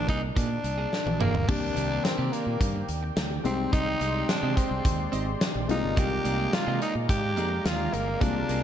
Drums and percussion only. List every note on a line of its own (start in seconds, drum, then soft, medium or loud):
0.09 kick medium
0.09 closed hi-hat medium
0.36 kick medium
0.36 closed hi-hat medium
0.64 closed hi-hat medium
0.93 snare medium
1.07 high tom medium
1.21 mid tom medium
1.35 floor tom medium
1.49 kick loud
1.49 crash medium
1.77 closed hi-hat medium
2.05 snare medium
2.05 closed hi-hat medium
2.33 closed hi-hat medium
2.61 kick medium
2.61 closed hi-hat loud
2.89 closed hi-hat medium
3.17 snare loud
3.17 closed hi-hat medium
3.45 closed hi-hat medium
3.73 kick loud
3.73 closed hi-hat medium
4.01 closed hi-hat medium
4.29 snare loud
4.29 closed hi-hat medium
4.57 kick medium
4.57 closed hi-hat medium
4.85 kick medium
4.85 closed hi-hat loud
5.13 closed hi-hat medium
5.41 snare loud
5.41 closed hi-hat medium
5.69 closed hi-hat medium
5.97 kick loud
5.97 closed hi-hat medium
6.25 closed hi-hat medium
6.53 snare medium
6.53 closed hi-hat medium
6.82 closed hi-hat medium
7.09 kick medium
7.09 closed hi-hat medium
7.37 closed hi-hat medium
7.66 snare loud
7.66 closed hi-hat medium
7.93 closed hi-hat medium
8.21 kick loud
8.21 closed hi-hat medium
8.49 closed hi-hat medium